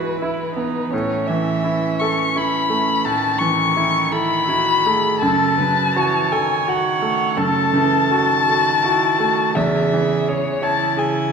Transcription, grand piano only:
Already playing: G#2 G#3 B3 E4 B4
0.22 E4
0.57 B3
0.93 A2
1.29 E3
1.64 E4
2.01 A4
2.36 E4
2.70 A3
3.06 A2
3.41 E3
3.77 E4
4.12 A4
4.49 E4
4.86 A3
5.22 F#2
5.59 C#3
5.96 F#4
6.32 A4
6.68 F#4
7.02 A3
7.37 F#2
7.74 C#3
8.11 F#4
8.48 A4
8.84 F#4
9.20 A3
9.57 E2
9.93 E3
10.28 G#4
10.62 C#5
10.97 G#4

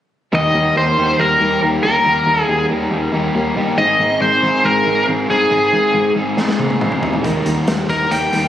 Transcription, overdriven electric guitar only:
0.32 D#3 G3 A#3 D#4 G4
0.97 G3 A#3 D#4 G4
1.40 G3 A#3 D#4 G4
1.62 G3 A#3 D#4 G4
1.84 G3 A#3 D#4 G4
2.05 D#3 G3 A#3 D#4 G4
2.69 G3 A#3 D#4 G4
3.12 G3 A#3 D#4 G4
3.34 G3 A#3 D#4 G4
3.55 G3 A#3 D#4 G4
3.77 G#2 D#3 G#3 C4 D#4 G#4
4.42 G#3 C4 D#4 G#4
4.85 G#3 C4 D#4 G#4
5.07 G#3 C4 D#4 G#4
5.29 G#3 C4 D#4 G#4
5.50 G#2 D#3 G#3 C4 D#4 G#4
6.15 G#3 C4 D#4 G#4
6.58 G#3 C4 D#4 G#4
6.80 G#3 C4 D#4 G#4
7.02 G#3 C4 D#4 G#4
7.24 D#3 G3 A#3 D#4 A#4
7.88 G3 A#3 D#4 A#4
8.32 G3 A#3 D#4 A#4

